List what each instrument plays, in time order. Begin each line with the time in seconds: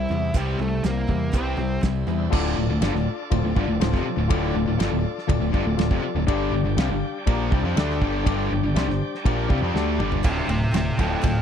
Already playing: tonewheel organ C4 E4 G4 C5, lead electric guitar E4
0.09 picked electric bass E2, overdriven electric guitar C3 G3, steel-string acoustic guitar G3 C4 E4
0.34 picked electric bass C2, steel-string acoustic guitar C3 E3 G3 C4 E4, overdriven electric guitar C3 G3 C4, lead electric guitar G3, kick, closed hi-hat
0.58 picked electric bass C2, overdriven electric guitar C3 G3, lead electric guitar A3, steel-string acoustic guitar C4 E4
0.63 steel-string acoustic guitar G3
0.84 picked electric bass C2, overdriven electric guitar C3 G3, steel-string acoustic guitar E3 G3 C4 E4, lead electric guitar A#3, snare, closed hi-hat
1.07 picked electric bass E2, overdriven electric guitar C3 G3, steel-string acoustic guitar G3 C4 E4, kick
1.32 picked electric bass C2, steel-string acoustic guitar C3 E3 G3 C4 E4, overdriven electric guitar C3 G3 C4, lead electric guitar C4, kick, closed hi-hat
1.57 picked electric bass C2, overdriven electric guitar C3 G3, steel-string acoustic guitar G3 C4 E4
1.81 picked electric bass C2, overdriven electric guitar C3 G3, steel-string acoustic guitar E3 G3 C4 E4, kick, snare, closed hi-hat
2.03 picked electric bass E2, tonewheel organ B3 C4, steel-string acoustic guitar E4
2.08 overdriven electric guitar C3 G3, steel-string acoustic guitar G3 C4, tonewheel organ D4 E4
2.14 tonewheel organ F4 G4
2.19 tonewheel organ A4 B4
2.25 tonewheel organ C5 D5
2.30 picked electric bass D1, overdriven electric guitar D2 A2 D3, tonewheel organ D4 F4 A4 D5 E5, reed electric piano F4 A4 D5, kick, crash
2.56 picked electric bass D1, overdriven electric guitar D2 A2
2.69 picked electric bass D1, overdriven electric guitar D2 A2
2.81 picked electric bass G1, overdriven electric guitar G2 D3, reed electric piano F4 A4 D5, snare, ride bell
2.93 picked electric bass D1, overdriven electric guitar D2 A2, snare
3.30 picked electric bass D1, overdriven electric guitar D2 A2, reed electric piano F4 A4 C5, kick, ride bell
3.43 picked electric bass D1, overdriven electric guitar D2 A2
3.55 picked electric bass G1, overdriven electric guitar G2 D3, reed electric piano F4 A4 D5, kick
3.68 picked electric bass D1, overdriven electric guitar D2 A2
3.80 picked electric bass D1, overdriven electric guitar D2 A2, reed electric piano F4 A4 C5, snare, ride bell
3.92 picked electric bass F1, overdriven electric guitar F2 C3, kick, snare
4.04 muted overdriven electric guitar stroke, muted distorted electric guitar stroke
4.16 picked electric bass D1, overdriven electric guitar D2 A2
4.28 picked electric bass D1, overdriven electric guitar D2 A2 D3, reed electric piano F4 A4 D5, kick, ride bell
4.54 picked electric bass D1, overdriven electric guitar D2 A2
4.66 picked electric bass D1, overdriven electric guitar D2 A2
4.78 picked electric bass G1, overdriven electric guitar G2 D3, reed electric piano F4 A4 D5, snare, ride bell
4.91 picked electric bass D1, overdriven electric guitar D2 A2
5.18 snare
5.27 picked electric bass D1, overdriven electric guitar D2 A2, reed electric piano F4 A4 D5, kick, ride bell
5.40 picked electric bass D1, overdriven electric guitar D2 A2
5.52 picked electric bass G1, overdriven electric guitar G2 D3, reed electric piano F4 A4 D5, kick
5.65 picked electric bass D1, overdriven electric guitar D2 A2
5.77 picked electric bass D1, overdriven electric guitar D2 A2, reed electric piano F4 A4 D5, snare, ride bell
5.90 picked electric bass F1, overdriven electric guitar F2 C3, kick
6.03 muted distorted electric guitar stroke, muted overdriven electric guitar stroke
6.15 picked electric bass D1, overdriven electric guitar D2 A2
6.27 picked electric bass G1, overdriven electric guitar G2 D3 G3, tonewheel organ G3 D4 G4 D5, reed electric piano D4 G4 D5, kick, ride bell
6.52 picked electric bass G1, overdriven electric guitar G2 D3
6.64 picked electric bass G1, overdriven electric guitar G2 D3
6.77 picked electric bass C2, overdriven electric guitar C3 G3, reed electric piano D4 G4 F5, snare, ride bell
6.89 picked electric bass G1, overdriven electric guitar G2 D3
7.26 picked electric bass A#1, overdriven electric guitar A#2 F3 A#3, reed electric piano D4 G4 A#4, kick, ride bell
7.50 picked electric bass C2, overdriven electric guitar C3 G3, reed electric piano D4 G4 D5, kick
7.63 picked electric bass F2, overdriven electric guitar F3 C4
7.75 picked electric bass D2, overdriven electric guitar D3 A3 D4, reed electric piano D4 G4 D5, snare, ride bell
7.90 snare
8.01 picked electric bass G1, overdriven electric guitar G2 D3 G3, kick
8.25 picked electric bass G1, overdriven electric guitar G2 D3 G3, reed electric piano D4 G4 D5, kick, ride bell
8.51 picked electric bass G1, overdriven electric guitar G2 D3
8.63 picked electric bass G1, overdriven electric guitar G2 D3
8.75 picked electric bass C2, overdriven electric guitar C3 G3, reed electric piano D4 G4 C5, snare, ride bell
8.87 picked electric bass G1, overdriven electric guitar G2 D3, snare
9.15 snare
9.24 picked electric bass A#1, overdriven electric guitar A#2 F3 A#3, reed electric piano D4 G4 F5, kick, ride bell
9.48 picked electric bass C2, overdriven electric guitar C3 G3, reed electric piano D4 G4 F5, kick
9.61 picked electric bass F2, overdriven electric guitar F3 C4
9.74 picked electric bass D2, overdriven electric guitar D3 A3 D4, reed electric piano D4 G4 D5, snare
9.98 picked electric bass G1, overdriven electric guitar G2 D3 G3, mid tom
10.12 floor tom
10.23 picked electric bass D1, overdriven electric guitar D2 A2 D3, steel-string acoustic guitar D3 A3 D4 F4, tonewheel organ A3 D4 F4 A4, lead electric guitar G4 C5, kick, ride
10.47 picked electric bass D1, overdriven electric guitar D2 A2, steel-string acoustic guitar A3 D4 F4, lead electric guitar G4, ride
10.51 lead electric guitar C5
10.71 picked electric bass D1, overdriven electric guitar D2 A2, steel-string acoustic guitar D3 A3 D4 F4, lead electric guitar G4, snare, ride
10.76 lead electric guitar C5
10.97 picked electric bass D1, overdriven electric guitar D2 A2 D3, steel-string acoustic guitar A3 D4 F4, lead electric guitar F4 A4, kick, ride
11.22 picked electric bass D1, overdriven electric guitar D2 A2, steel-string acoustic guitar D3 A3 D4 F4, lead electric guitar F4 A4, kick, ride